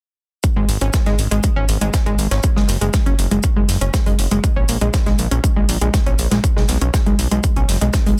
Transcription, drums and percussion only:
0.44 kick loud
0.44 closed hi-hat medium
0.44 shaker medium
0.69 open hi-hat loud
0.69 shaker medium
0.81 closed hi-hat medium
0.93 kick loud
0.93 snare loud
0.93 closed hi-hat medium
0.93 shaker medium
1.06 snare soft
1.06 closed hi-hat soft
1.19 open hi-hat medium
1.19 shaker medium
1.31 closed hi-hat medium
1.43 kick loud
1.43 closed hi-hat medium
1.43 shaker medium
1.69 open hi-hat loud
1.69 shaker medium
1.81 closed hi-hat medium
1.94 kick loud
1.94 snare loud
1.94 closed hi-hat medium
1.94 shaker medium
2.06 closed hi-hat soft
2.19 open hi-hat medium
2.19 shaker medium
2.31 snare soft
2.31 closed hi-hat medium
2.43 kick loud
2.43 closed hi-hat medium
2.43 shaker medium
2.56 snare medium
2.68 snare medium
2.68 open hi-hat loud
2.68 shaker medium
2.81 closed hi-hat medium
2.94 kick loud
2.94 snare loud
2.94 closed hi-hat medium
2.94 shaker medium
3.06 closed hi-hat soft
3.19 open hi-hat medium
3.19 shaker medium
3.31 closed hi-hat medium
3.43 kick loud
3.43 closed hi-hat medium
3.43 shaker medium
3.69 snare soft
3.69 open hi-hat loud
3.69 shaker medium
3.81 closed hi-hat medium
3.94 kick loud
3.94 snare loud
3.94 closed hi-hat medium
3.94 shaker medium
4.06 closed hi-hat soft
4.19 open hi-hat medium
4.19 shaker medium
4.31 closed hi-hat soft
4.44 kick loud
4.44 closed hi-hat medium
4.44 shaker medium
4.68 open hi-hat loud
4.68 shaker medium
4.81 closed hi-hat soft
4.94 kick loud
4.94 snare loud
4.94 closed hi-hat medium
4.94 shaker medium
5.06 snare soft
5.06 closed hi-hat soft
5.19 open hi-hat medium
5.19 shaker medium
5.31 closed hi-hat soft
5.44 kick loud
5.44 closed hi-hat medium
5.44 shaker medium
5.69 open hi-hat loud
5.69 shaker medium
5.81 closed hi-hat medium
5.94 kick loud
5.94 snare loud
5.94 closed hi-hat medium
5.94 shaker medium
6.06 closed hi-hat soft
6.19 open hi-hat loud
6.19 shaker medium
6.31 snare soft
6.31 closed hi-hat soft
6.44 kick loud
6.44 closed hi-hat medium
6.44 shaker medium
6.57 snare medium
6.68 snare medium
6.68 open hi-hat loud
6.68 shaker medium
6.81 closed hi-hat soft
6.94 kick loud
6.94 snare loud
6.94 closed hi-hat medium
6.94 shaker medium
7.06 closed hi-hat soft
7.19 open hi-hat medium
7.19 shaker medium
7.31 closed hi-hat soft
7.43 kick loud
7.43 closed hi-hat medium
7.43 shaker medium
7.56 closed hi-hat soft
7.68 snare soft
7.68 open hi-hat loud
7.68 shaker medium
7.81 closed hi-hat soft
7.93 kick loud
7.93 snare loud
7.93 closed hi-hat medium
7.93 shaker medium
8.06 closed hi-hat soft

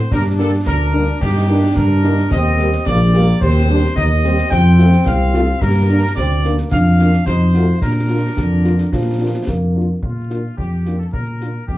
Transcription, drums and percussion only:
0.11 concert bass drum medium
0.11 snare medium
0.66 concert bass drum medium
0.66 snare medium
1.21 concert bass drum medium
1.21 snare medium
1.21 crash soft
1.76 concert bass drum medium
1.76 snare medium
2.04 snare medium
2.17 snare medium
2.31 concert bass drum medium
2.31 snare medium
2.59 snare medium
2.72 snare medium
2.86 concert bass drum medium
2.86 snare medium
3.14 snare medium
3.41 concert bass drum medium
3.41 snare medium
3.96 concert bass drum medium
3.96 snare medium
4.24 snare medium
4.38 snare medium
4.51 concert bass drum medium
4.51 snare medium
4.79 snare medium
4.93 snare medium
5.06 concert bass drum medium
5.06 snare medium
5.34 snare medium
5.61 concert bass drum medium
5.61 snare medium
5.61 crash soft
6.17 concert bass drum medium
6.17 snare medium
6.44 snare medium
6.58 snare medium
6.71 concert bass drum medium
6.71 snare medium
6.99 snare medium
7.13 snare medium
7.26 concert bass drum medium
7.26 snare medium
7.54 snare medium
7.82 concert bass drum medium
7.82 snare medium
8.37 concert bass drum medium
8.37 snare medium
8.65 snare soft
8.78 snare medium
8.92 concert bass drum medium
8.92 snare medium
9.47 concert bass drum medium
9.47 snare medium
10.02 concert bass drum medium
10.30 snare soft
10.58 concert bass drum medium
10.86 snare soft
11.13 concert bass drum medium
11.41 snare soft
11.68 concert bass drum medium

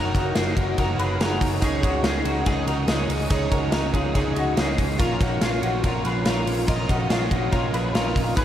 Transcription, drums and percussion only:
0.14 kick medium
0.14 snare soft
0.14 ride medium
0.35 snare loud
0.35 ride medium
0.57 kick medium
0.57 ride medium
0.78 kick medium
0.78 ride medium
0.99 ride medium
1.21 snare loud
1.21 ride medium
1.41 kick medium
1.41 open hi-hat medium
1.41 ride medium
1.62 kick loud
1.62 hi-hat pedal medium
1.62 ride medium
1.83 kick loud
1.83 ride medium
2.04 snare loud
2.04 ride medium
2.25 ride medium
2.46 kick medium
2.46 ride medium
2.68 ride medium
2.88 snare loud
2.88 ride medium
3.10 open hi-hat medium
3.10 ride medium
3.30 kick loud
3.30 hi-hat pedal medium
3.30 ride medium
3.52 kick loud
3.52 ride medium
3.72 snare loud
3.72 ride medium
3.94 kick medium
3.94 ride medium
4.15 kick medium
4.15 ride medium
4.36 ride medium
4.57 snare loud
4.57 ride medium
4.78 kick medium
4.78 open hi-hat medium
4.78 ride medium
5.00 kick loud
5.00 hi-hat pedal medium
5.00 ride medium
5.20 kick loud
5.20 snare soft
5.20 ride medium
5.41 snare loud
5.41 ride medium
5.63 ride medium
5.84 kick medium
5.84 ride medium
6.05 ride medium
6.25 snare loud
6.25 ride medium
6.47 open hi-hat medium
6.47 ride medium
6.68 kick loud
6.68 hi-hat pedal medium
6.68 ride medium
6.89 kick loud
6.89 ride medium
7.10 snare loud
7.10 ride medium
7.31 kick medium
7.31 ride medium
7.52 kick medium
7.52 ride medium
7.74 ride medium
7.95 snare loud
7.95 ride medium
8.16 kick medium
8.16 open hi-hat medium
8.16 ride medium
8.37 kick loud
8.37 hi-hat pedal medium
8.37 ride medium

